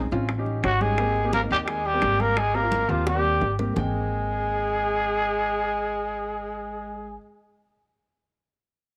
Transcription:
0.11 A1 C4 C#4 F4, high bongo
0.29 high bongo, high conga
0.38 C#4 D#4 G4
0.46 high bongo, high conga
0.64 G#1 F#3 F#4, high bongo, low bongo, high conga
0.81 G#3 C#4 D#4 G4 G#4, high conga
0.98 A#3 C4 G4, high bongo, high conga
1.16 high conga
1.24 A#3 C4 G4
1.33 A#3 A#4, high bongo, high conga
1.42 A#3 C4 D#4
1.50 D#2 G3 G4
1.64 G3 G4, high bongo, high conga
1.69 G#3 G#4
1.85 G3 G4, high conga
1.94 A#3 C4 G4
2.02 G#1, high bongo, low bongo, high conga
2.20 A#3 A#4, high conga
2.37 G#3 G#4, high bongo, high conga
2.54 A#3 C4 G4 A#4, high bongo, high conga
2.63 A#3 C4 F4
2.71 high bongo, high conga
2.89 D#2 F3 A#3 C4 F4 G4, high bongo
3.07 G3 G4, high bongo, high conga
3.15 A#3 C4 G4
3.24 high conga
3.41 G#1, low bongo, high conga
3.59 A#3 C4 G4, low bongo, high conga
3.74 G#1 G#3 A#3 C4 G#4, low bongo, low conga
3.78 G5

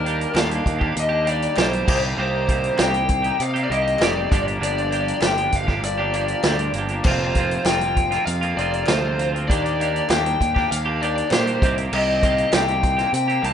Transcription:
Already playing: D#2 D#3 A#4
0.04 D#3 G3 A#3 D4 G4, closed hi-hat
0.21 closed hi-hat
0.35 D#2 D#3 G3 A#3 D4 G4, snare, clap, closed hi-hat
0.39 F5
0.51 A#3 D4 G4, closed hi-hat
0.66 D#2, muted clean electric guitar stroke, kick, closed hi-hat
0.80 A#3 D4 G4, kick
0.96 D#2 D#5, muted clean electric guitar stroke, closed hi-hat
1.11 A#3 D4 G4
1.24 D#3 G3 A#3, closed hi-hat
1.28 D4 G4 D5
1.42 closed hi-hat
1.57 B1 D#3 G3 A#3 D4 G4 C5, snare, clap, closed hi-hat
1.73 A#3 D4 G4, closed hi-hat
1.86 C2 C3 D#3 G3 A#3 C4 D#4 G4, kick, crash
2.02 A#3 C4 D#4 G4
2.16 C2 C3 D#3 G3 C4
2.20 A#3 D#4 G4 C5
2.47 D#3 G3 A#3 C4 D#4, kick, closed hi-hat
2.51 G4
2.64 closed hi-hat
2.76 C2 C3 D#3 C4, snare, clap, closed hi-hat
2.81 C3 G3 A#3 D#4 G4 G5
2.94 A#3 D#4 G4, closed hi-hat
3.09 muted clean electric guitar stroke, kick, closed hi-hat
3.23 A#3 C4 D#4 G4, closed hi-hat
3.39 C3, muted clean electric guitar stroke, closed hi-hat
3.43 F5
3.55 A#3 C4 D#4 G4, closed hi-hat
3.64 D5
3.69 C2 D#3 G3 A#3 C4 D#4 G4 D#5, closed hi-hat
3.87 closed hi-hat
3.99 F1 C3 D#3 G3 A#3 C4 D#4 G4, snare, clap, closed hi-hat
4.03 D5
4.16 A#3 C4 D#4 G4
4.32 G1 G2 D3 F3 A#3 D4 G4, kick, closed hi-hat
4.47 F3 A#3 D4 G4, closed hi-hat
4.61 G1 G2 D3 F3 A#3 D4 G4 D5, closed hi-hat
4.78 closed hi-hat
4.90 F3 A#3 D4 G4, closed hi-hat
5.08 closed hi-hat
5.21 G1 G2 D3 F3 A#3 D4 G4, snare, clap, closed hi-hat
5.26 G5
5.37 F3 A#3 D4 G4, closed hi-hat
5.52 G1, muted clean electric guitar stroke, kick, closed hi-hat
5.56 F5
5.66 F3 A#3 D4 G4, kick, snare
5.81 G1 D5, muted clean electric guitar stroke, closed hi-hat
5.98 F3 A#3 D4 G4
6.13 F3 A#3 D4 G4, closed hi-hat
6.28 closed hi-hat
6.44 D2 G2 D3 F3 A#3 D4 G4, snare, clap, closed hi-hat
6.59 F3 A#3 D4 G4, closed hi-hat
6.73 G1 F3 A#3 D4, closed hi-hat
6.78 G4
6.88 A#3 D4 G4, closed hi-hat
6.93 F3
7.04 F1 F2 C3 F3 A#3 C4 C5, kick, crash
7.08 F4
7.35 F3 A#3 C4 F4, kick, closed hi-hat
7.51 closed hi-hat
7.65 F1 F2 C3 F3 A#3 C4 F4 G5, snare, clap, closed hi-hat
7.81 F3 A#3 C4 F4, closed hi-hat
7.96 muted clean electric guitar stroke, kick, closed hi-hat
8.12 F3 A#3 C4 F4, snare, closed hi-hat
8.26 F2 F5, muted clean electric guitar stroke, closed hi-hat
8.42 F3 A#3 C4 F4, closed hi-hat
8.56 F1 F3 A#3 C4 F4 D5, closed hi-hat
8.73 closed hi-hat
8.87 D2 F2 C3 F3 A#3 C4 F4 C5, snare, clap, closed hi-hat
9.02 F3 A#3 C4 F4
9.18 F3 A#3 C4 F4, closed hi-hat
9.34 F3 A#3 C4 F4, closed hi-hat
9.48 D#2 D#3 A#3 D4 D5, kick, closed hi-hat
9.52 G4
9.66 closed hi-hat
9.80 D#3 A#3 D4 G4, closed hi-hat
9.96 closed hi-hat
10.09 D#2 D#3 A#3 D4 G4 G5, snare, clap, closed hi-hat
10.25 A#3 D4 G4, closed hi-hat
10.40 D#2, muted clean electric guitar stroke, kick, closed hi-hat
10.55 A#3 D4 G4, kick, snare
10.71 D#2 F5, muted clean electric guitar stroke, closed hi-hat
10.84 A#3 D4 G4
11.00 D#3 A#3 D4 G4 D5, closed hi-hat
11.18 closed hi-hat
11.31 A#2 D#3 A#3 D4 G4 C5, snare, clap, closed hi-hat
11.46 A#3 D4 G4, closed hi-hat
11.62 C2 C3 D#3 A#3 C4 G4, kick, closed hi-hat
11.78 A#3 C4 G4, closed hi-hat
11.92 C2 C3 D#3 A#3 C4 G4 D#5, crash
12.21 D#3 A#3 C4 G4, kick, closed hi-hat
12.38 closed hi-hat
12.51 C2 C3 D#3 A#3 C4 G4 G5, snare, clap, closed hi-hat
12.68 A#3 C4 G4, closed hi-hat
12.83 muted clean electric guitar stroke, kick, closed hi-hat
12.97 A#3 C4 G4, snare, closed hi-hat
13.13 C3 G5, muted clean electric guitar stroke, closed hi-hat
13.29 A#3 C4 G4, closed hi-hat
13.42 C2 D#3 A#3 C4 G4 A5, closed hi-hat

